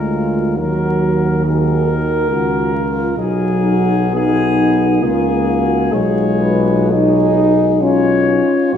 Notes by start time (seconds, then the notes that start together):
Already playing: D2 G#3 F4 A#4
0.12 F4
0.55 D#2 F#3 F#4 A#4
1.43 D#3 F#4 G#4 A#4
1.86 A#4
2.29 C#2 F4 F#4
2.73 F4
3.16 B1 F#3 D#4 G#4
3.65 F#4
4.13 B3 D#4 G#4
5.02 C#2 A#3 F4 G#4
5.47 F#4
5.92 B1 G#3 F4 G#4 C#5
6.42 B4
6.90 D#4 G#4
7.81 C#4 F4 C#5
8.73 A#1 F#3 F#4 C#5